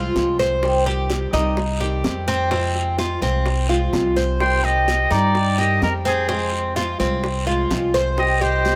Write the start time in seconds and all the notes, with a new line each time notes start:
Already playing: C2 F3 G#3 C4 F4
0.15 C2 F3 G#3 C4 F4, high bongo, low bongo, short guiro
0.39 C5, high bongo, short guiro
0.63 C3 D#3 G3 C4 G4, high bongo, long guiro
0.86 G4, high bongo
1.10 D#3 G3 C4 G4, high bongo, short guiro
1.33 C2 D#3 G3 C4 D#4 G4, short guiro
1.57 muted steel-string acoustic guitar stroke, high bongo, long guiro
1.80 D#3 G3 C4 G4, high bongo
2.04 D#3 G3 C4 G4, high bongo, low bongo, short guiro
2.28 C4, high bongo, short guiro
2.51 C3 F3 G#3 C4 F4, high bongo, long guiro
2.75 high bongo
2.98 F3 G#3 C4 F4, high bongo, short guiro
3.21 C2 F3 G#3 C4 F4, short guiro
3.46 muted steel-string acoustic guitar stroke, high bongo, long guiro
3.69 F3 G#3 C4 F4, high bongo
3.93 C2 F3 G#3 C4 F4, high bongo, low bongo, short guiro
4.16 C5, high bongo, short guiro
4.40 C3 D#3 G3 C4 G4 G5 C6, high bongo, long guiro
4.64 G4 D#5 G5, high bongo
4.87 D#3 G3 C4 G4, high bongo, short guiro
5.11 G2 D#3 G3 C4 D#4 G4 D5 G5, short guiro
5.35 muted steel-string acoustic guitar stroke, high bongo, long guiro
5.58 D#3 G3 C4 G4 D#5 G5, high bongo
5.82 F2 D#3 G3 C4 G4 A#4 D#5, high bongo, low bongo, short guiro
6.05 C4 G#4 C5, high bongo, short guiro
6.29 C3 F3 G#3 C4 F4, high bongo, long guiro
6.53 high bongo
6.76 F3 G#3 C4 F4, high bongo, short guiro
6.99 C2 F3 G#3 C4 F4, short guiro
7.23 muted steel-string acoustic guitar stroke, high bongo, long guiro
7.46 F3 G#3 C4 F4, high bongo
7.70 C2 F3 G#3 C4 F4, high bongo, low bongo, short guiro
7.94 C5, high bongo, short guiro
8.17 C3 D#3 G3 C4 G4 D#5 G5, high bongo, long guiro
8.41 G4 C5 D#5, high bongo
8.64 D#3 G3 C4 G4, high bongo, short guiro